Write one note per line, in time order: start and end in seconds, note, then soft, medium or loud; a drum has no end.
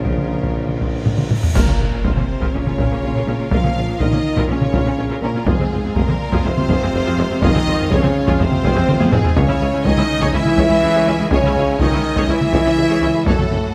0.00 1.31 A#1 medium
0.00 1.02 C#3 medium
0.00 1.25 C#3 medium
0.00 1.26 F3 medium
0.00 1.03 A#3 medium
0.00 1.31 F4 medium
0.00 1.35 A#4 medium
0.00 1.35 C#5 medium
0.00 cymbal swell soft
0.05 taiko medium
0.18 taiko mid soft
0.43 taiko medium
0.68 taiko mid soft
0.81 taiko medium
1.06 taiko low-mid medium
1.18 taiko mid medium
1.31 taiko low-mid medium
1.43 taiko low medium
1.54 1.60 A#1 medium
1.54 2.00 A#2 medium
1.54 1.60 A#2 medium
1.54 2.01 A#3 medium
1.54 5.43 A#3 medium
1.54 1.60 F4 medium
1.54 5.43 F4 medium
1.54 1.60 A#4 medium
1.54 2.01 A#4 medium
1.54 5.43 A#4 medium
1.54 5.42 F5 medium
1.54 concert bass drum medium
1.54 taiko loud
1.54 crash medium
1.54 impact medium
1.67 1.73 A#2 medium
1.67 1.72 A#3 soft
1.67 1.72 C#4 soft
1.67 taiko mid medium
1.80 1.85 A#1 medium
1.80 1.85 A#2 soft
1.80 1.85 C#4 soft
1.80 1.85 F4 soft
1.92 1.98 A#2 medium
1.92 1.97 A#3 soft
1.92 1.97 C#4 soft
2.04 2.09 A#1 medium
2.04 2.10 A#1 medium
2.04 2.10 A#2 medium
2.04 2.53 C3 medium
2.04 2.54 C4 medium
2.04 2.09 F4 medium
2.04 2.09 A#4 medium
2.04 2.54 C5 medium
2.04 taiko medium
2.17 2.22 A#2 medium
2.17 2.22 A#3 medium
2.17 2.22 C#4 medium
2.17 taiko mid soft
2.41 2.47 A#2 medium
2.41 2.46 F4 medium
2.41 2.46 A#4 medium
2.41 taiko medium
2.52 2.59 A#1 medium
2.52 2.59 A#2 medium
2.52 3.51 C#3 medium
2.52 2.59 A#3 medium
2.52 3.51 C#4 loud
2.52 2.59 C#4 medium
2.52 3.51 C#5 medium
2.66 2.71 A#2 medium
2.66 2.72 C#4 medium
2.66 2.72 F4 soft
2.66 taiko mid soft
2.78 2.83 A#1 medium
2.78 2.83 A#2 medium
2.78 2.85 F4 medium
2.78 2.84 A#4 medium
2.78 taiko medium
2.91 2.96 A#2 soft
2.91 2.97 A#3 medium
2.91 2.96 C#4 medium
3.03 3.08 A#1 medium
3.03 3.08 A#1 soft
3.03 3.08 A#2 medium
3.03 3.09 C#4 medium
3.03 3.09 F4 medium
3.15 3.20 A#2 medium
3.15 3.21 F4 medium
3.15 3.21 A#4 medium
3.27 3.32 A#1 medium
3.27 3.33 A#1 medium
3.27 3.32 A#2 medium
3.27 3.33 A#3 medium
3.27 3.33 C#4 medium
3.38 3.44 A#2 medium
3.38 3.46 C#4 medium
3.38 3.46 F4 medium
3.50 3.57 A#1 medium
3.50 3.56 A#2 medium
3.50 3.99 F3 medium
3.50 3.99 F4 medium
3.50 3.57 F4 medium
3.50 3.57 A#4 medium
3.50 3.98 F5 medium
3.50 3.99 F5 medium
3.50 taiko medium
3.63 3.68 A#2 medium
3.63 3.69 A#3 medium
3.63 3.69 C#4 medium
3.63 taiko mid medium
3.75 3.81 A#1 medium
3.75 3.80 A#2 medium
3.75 3.82 C#4 medium
3.75 3.82 F4 soft
3.87 3.92 A#2 medium
3.87 3.94 A#3 soft
3.87 3.94 C#4 medium
4.00 4.05 A#1 medium
4.00 4.06 A#1 medium
4.00 4.05 A#2 medium
4.00 4.49 D#3 medium
4.00 4.49 D#4 loud
4.00 4.05 F4 medium
4.00 4.05 A#4 medium
4.00 4.49 D#5 medium
4.00 4.48 D#5 medium
4.00 taiko medium
4.11 4.16 A#2 medium
4.11 4.17 A#3 medium
4.11 4.17 C#4 medium
4.11 taiko mid medium
4.36 4.41 A#2 medium
4.36 4.42 F4 medium
4.36 4.42 A#4 medium
4.36 taiko medium
4.48 4.54 A#1 medium
4.48 4.55 A#1 medium
4.48 4.53 A#2 medium
4.48 5.22 C#3 medium
4.48 4.55 A#3 medium
4.48 5.21 C#4 loud
4.48 4.55 C#4 medium
4.48 5.20 C#5 medium
4.48 5.21 C#5 medium
4.60 4.65 A#2 medium
4.60 4.67 C#4 medium
4.60 4.66 F4 medium
4.60 taiko mid soft
4.72 4.78 A#1 medium
4.72 4.79 A#1 medium
4.72 4.77 A#2 medium
4.72 4.79 F4 medium
4.72 4.78 A#4 medium
4.72 taiko medium
4.85 4.90 A#2 medium
4.85 4.91 A#3 medium
4.85 4.91 C#4 medium
4.97 5.03 A#1 medium
4.97 5.02 A#2 medium
4.97 5.03 C#4 medium
4.97 5.03 F4 medium
5.10 5.15 A#2 medium
5.10 5.15 F4 medium
5.10 5.15 A#4 medium
5.21 5.27 A#1 medium
5.21 5.27 A#2 medium
5.21 5.47 A#2 medium
5.21 5.46 A#3 medium
5.21 5.28 A#3 medium
5.21 5.28 C#4 medium
5.21 5.45 A#4 medium
5.21 5.46 A#4 medium
5.34 5.39 A#2 medium
5.34 5.40 C#4 medium
5.34 5.40 F4 medium
5.44 5.51 F1 medium
5.44 5.52 F1 medium
5.44 5.51 F2 medium
5.44 5.95 G#2 medium
5.44 5.93 G#3 loud
5.44 9.35 G#3 medium
5.44 9.32 F4 medium
5.44 5.52 F4 medium
5.44 5.95 G#4 medium
5.44 5.52 G#4 medium
5.44 9.32 F5 medium
5.44 9.37 C6 medium
5.44 taiko loud
5.58 5.63 F2 medium
5.58 5.64 G#3 medium
5.58 5.64 C4 medium
5.58 taiko mid medium
5.71 5.76 F1 medium
5.71 5.77 F1 medium
5.71 5.76 F2 medium
5.71 5.77 C4 medium
5.71 5.76 F4 medium
5.83 5.88 F2 medium
5.83 5.89 G#3 medium
5.83 5.89 C4 medium
5.94 6.00 F1 medium
5.94 6.01 F1 medium
5.94 6.00 F2 loud
5.94 6.44 A#2 medium
5.94 6.45 A#3 loud
5.94 6.01 F4 medium
5.94 6.01 G#4 medium
5.94 6.44 A#4 loud
5.94 6.43 A#4 medium
5.94 taiko medium
6.08 6.13 F2 medium
6.08 6.13 G#3 medium
6.08 6.13 C4 medium
6.08 taiko mid medium
6.32 6.37 F2 loud
6.32 6.37 F4 medium
6.32 6.37 G#4 medium
6.32 taiko medium
6.43 6.49 F1 medium
6.43 6.50 F1 medium
6.43 6.49 F2 medium
6.43 7.42 C3 loud
6.43 6.50 G#3 medium
6.43 7.40 C4 loud
6.43 6.50 C4 medium
6.43 7.42 C5 loud
6.43 7.43 C5 loud
6.56 6.61 F2 medium
6.56 6.62 C4 medium
6.56 6.63 F4 medium
6.56 taiko mid medium
6.69 6.74 F1 medium
6.69 6.74 F2 loud
6.69 6.74 F4 loud
6.69 6.74 G#4 medium
6.69 taiko medium
6.81 6.86 F2 medium
6.81 6.87 G#3 medium
6.81 6.87 C4 medium
6.93 6.98 F1 medium
6.93 6.99 F1 medium
6.93 6.99 F2 medium
6.93 6.99 C4 medium
6.93 6.99 F4 medium
7.06 7.11 F2 loud
7.06 7.11 F4 medium
7.06 7.11 G#4 medium
7.18 7.23 F1 medium
7.18 7.23 F2 medium
7.18 7.23 G#3 medium
7.18 7.23 C4 medium
7.30 7.35 F2 medium
7.30 7.36 C4 medium
7.30 7.36 F4 medium
7.42 7.47 F1 loud
7.42 7.47 F2 loud
7.42 7.91 D#3 loud
7.42 7.91 D#4 loud
7.42 7.48 F4 loud
7.42 7.48 G#4 loud
7.42 7.91 D#5 loud
7.42 7.90 D#5 loud
7.42 taiko loud
7.54 7.59 F2 medium
7.54 7.60 G#3 medium
7.54 7.59 C4 medium
7.54 taiko mid medium
7.66 7.72 F1 medium
7.66 7.72 F2 medium
7.66 7.72 C4 medium
7.66 7.71 F4 medium
7.79 7.84 F2 medium
7.79 7.84 G#3 medium
7.79 7.83 C4 medium
7.90 7.96 F1 loud
7.90 7.96 F2 loud
7.90 8.39 C#3 loud
7.90 8.40 C#4 loud
7.90 7.95 F4 medium
7.90 7.95 G#4 loud
7.90 8.40 C#5 medium
7.90 8.40 C#5 loud
7.90 taiko medium
8.02 8.08 F2 medium
8.02 8.07 G#3 medium
8.02 8.08 C4 medium
8.02 taiko mid medium
8.27 8.32 F2 loud
8.27 8.32 F4 loud
8.27 8.32 G#4 medium
8.27 taiko medium
8.39 8.45 F1 medium
8.39 8.45 F2 medium
8.39 9.12 C3 loud
8.39 8.44 G#3 medium
8.39 8.44 C4 medium
8.39 9.13 C4 loud
8.39 9.10 C5 loud
8.39 9.13 C5 loud
8.51 8.57 F2 medium
8.51 8.56 C4 medium
8.51 8.56 F4 medium
8.51 taiko mid medium
8.63 8.69 F1 loud
8.63 8.69 F2 loud
8.63 8.68 F4 loud
8.63 8.68 G#4 loud
8.63 taiko medium
8.75 8.81 F2 medium
8.75 8.80 G#3 medium
8.75 8.80 C4 medium
8.87 8.93 F1 medium
8.87 8.93 F2 medium
8.87 8.92 C4 medium
8.87 8.92 F4 medium
8.87 taiko mid loud
8.99 9.05 F2 loud
8.99 9.04 F4 medium
8.99 9.04 G#4 loud
8.99 taiko high medium
9.11 9.17 F1 medium
9.11 9.18 F1 medium
9.11 9.18 F2 medium
9.11 9.36 G#2 medium
9.11 9.16 G#3 medium
9.11 9.37 G#3 loud
9.11 9.16 C4 medium
9.11 9.36 G#4 loud
9.11 9.37 G#4 medium
9.11 taiko low-mid loud
9.24 9.30 F2 medium
9.24 9.29 C4 medium
9.24 9.29 F4 medium
9.24 taiko low loud
9.36 9.42 C#2 loud
9.36 9.84 C#3 loud
9.36 13.23 G#3 loud
9.36 13.27 C#4 loud
9.36 9.85 C#4 loud
9.36 9.41 G#4 loud
9.36 9.85 C#5 loud
9.36 9.41 C#5 loud
9.36 9.86 C#5 loud
9.36 13.27 G#5 loud
9.36 taiko loud
9.48 9.54 C#2 medium
9.48 9.53 C#4 medium
9.48 9.53 E4 medium
9.48 taiko mid medium
9.61 9.66 C#2 medium
9.61 9.66 E4 medium
9.61 9.65 G#4 medium
9.73 9.78 C#2 medium
9.73 9.78 C#4 medium
9.73 9.78 E4 medium
9.84 9.90 C#2 loud
9.84 10.18 D#3 loud
9.84 10.34 D#4 loud
9.84 9.90 G#4 loud
9.84 9.90 C#5 loud
9.84 10.33 D#5 loud
9.84 10.34 D#5 loud
9.84 taiko medium
9.97 10.02 C#2 medium
9.97 10.02 C#4 medium
9.97 10.02 E4 medium
9.97 taiko mid medium
10.21 10.26 C#2 loud
10.21 10.26 G#4 loud
10.21 10.26 C#5 loud
10.21 taiko medium
10.32 10.38 C#2 medium
10.32 10.39 C#2 medium
10.32 11.29 E3 loud
10.32 10.39 C#4 medium
10.32 10.39 E4 medium
10.32 11.13 E4 loud
10.32 11.31 E5 loud
10.32 11.30 E5 loud
10.45 10.50 C#2 medium
10.45 10.51 E4 medium
10.45 10.51 G#4 medium
10.45 taiko mid medium
10.57 10.63 C#2 loud
10.57 10.62 G#4 loud
10.57 10.63 C#5 loud
10.57 taiko medium
10.69 10.75 C#2 medium
10.69 10.74 C#4 medium
10.69 10.74 E4 medium
10.82 10.87 C#2 medium
10.82 10.88 C#2 medium
10.82 10.87 E4 medium
10.82 10.88 G#4 medium
10.94 10.99 C#2 loud
10.94 11.00 G#4 medium
10.94 10.99 C#5 medium
11.07 11.12 C#2 medium
11.07 11.12 C#4 medium
11.07 11.11 E4 medium
11.19 11.24 C#2 medium
11.19 11.24 E4 medium
11.19 11.25 G#4 medium
11.30 11.36 C#2 loud
11.30 11.37 C#2 loud
11.30 11.80 C#3 loud
11.30 11.78 C#4 loud
11.30 11.37 G#4 loud
11.30 11.79 C#5 loud
11.30 11.37 C#5 loud
11.30 11.80 C#5 loud
11.30 taiko loud
11.43 11.48 C#2 medium
11.43 11.50 C#4 medium
11.43 11.50 E4 medium
11.43 taiko mid medium
11.55 11.60 C#2 medium
11.55 11.61 C#2 medium
11.55 11.62 E4 medium
11.55 11.62 G#4 medium
11.68 11.72 C#2 medium
11.68 11.74 C#4 medium
11.68 11.75 E4 medium
11.78 11.84 C#2 loud
11.78 11.85 C#2 loud
11.78 12.28 D#3 loud
11.78 12.28 D#4 loud
11.78 11.86 G#4 medium
11.78 11.86 C#5 medium
11.78 12.28 D#5 loud
11.78 12.29 D#5 loud
11.78 taiko medium
11.92 11.97 C#2 medium
11.92 11.98 C#4 medium
11.92 11.97 E4 medium
11.92 taiko mid medium
12.16 12.21 C#2 loud
12.16 12.22 G#4 medium
12.16 12.22 C#5 medium
12.16 taiko medium
12.27 12.33 C#2 medium
12.27 12.34 C#2 medium
12.27 13.27 E3 loud
12.27 12.34 C#4 medium
12.27 13.26 E4 loud
12.27 12.34 E4 medium
12.27 13.27 E5 loud
12.41 12.46 C#2 medium
12.41 12.46 E4 medium
12.41 12.46 G#4 medium
12.41 taiko mid medium
12.53 12.58 C#2 loud
12.53 12.58 G#4 loud
12.53 12.58 C#5 medium
12.53 taiko medium
12.65 12.70 C#2 medium
12.65 12.71 C#4 medium
12.65 12.71 E4 medium
12.77 12.82 C#2 medium
12.77 12.83 C#2 medium
12.77 12.82 E4 medium
12.77 12.82 G#4 medium
12.89 12.94 C#2 loud
12.89 12.94 G#4 medium
12.89 12.95 C#5 medium
13.02 13.07 C#2 medium
13.02 13.07 C#4 medium
13.02 13.07 E4 medium
13.14 13.19 C#2 medium
13.14 13.19 E4 medium
13.14 13.19 G#4 medium
13.25 13.31 F#1 loud
13.25 13.31 F#1 medium
13.25 13.32 F#2 medium
13.25 13.74 A2 medium
13.25 13.74 A3 loud
13.25 13.74 F#4 loud
13.25 13.32 F#4 loud
13.25 13.74 A4 medium
13.25 13.74 A4 loud
13.25 13.32 C#5 medium
13.25 13.74 F#5 loud
13.25 taiko loud
13.38 13.44 F#2 medium
13.38 13.44 A3 medium
13.38 13.43 F#4 medium
13.38 taiko mid medium
13.51 13.56 F#1 medium
13.51 13.56 F#2 medium
13.51 13.56 C#4 medium
13.51 13.56 A4 medium
13.63 13.68 F#2 medium
13.63 13.69 A3 medium
13.63 13.69 F#4 medium